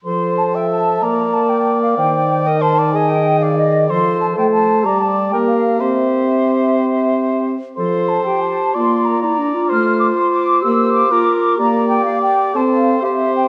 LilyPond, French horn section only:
\new Staff \with { instrumentName = "French horn section" } { \time 12/8 \key f \major \tempo 4. = 125 f2. bes2. | ees1. | f4. a4. g4. bes4. | c'1~ c'4. r8 |
f4. r4. bes4. r4. | a4. r4. bes4. r4. | bes4. r4. c'4. c'4. | }